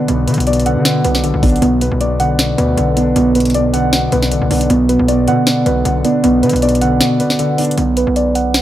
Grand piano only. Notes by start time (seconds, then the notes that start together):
Already playing: B2 D3 D4
0.09 B2
0.27 B2
0.47 B2
0.66 D3
0.85 B2
1.05 B2
1.24 D3
1.43 D4
1.62 B2
1.81 B2
2.01 B2
2.20 D3
2.39 B2
2.58 B2
2.77 D3
2.97 D4
3.16 B2
3.35 B2
3.55 B2
3.73 D3
3.93 B2
4.12 B2
4.32 D3
4.51 D4
4.70 B2
4.89 B2
5.08 B2
5.28 D3
5.47 B2
5.66 B2
5.85 D3
6.05 D4
6.24 B2
6.43 B2
6.62 B2
6.81 D3
7.01 B2
7.20 B2
7.39 D3
7.58 D4